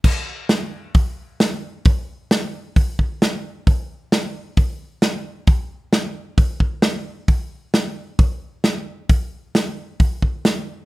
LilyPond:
\new DrumStaff \with { instrumentName = "Drums" } \drummode { \time 4/4 \tempo 4 = 133 <cymc bd>4 <hho sn>4 <hho bd>4 <hho sn>4 | <hho bd>4 <hho sn>4 <hho bd>8 bd8 <hho sn>4 | <hho bd>4 <hho sn>4 <hho bd>4 <hho sn>4 | <hho bd>4 <hho sn>4 <hho bd>8 bd8 <hho sn>4 |
<hho bd>4 <hho sn>4 <hho bd>4 <hho sn>4 | <hho bd>4 <hho sn>4 <hho bd>8 bd8 <hho sn>4 | }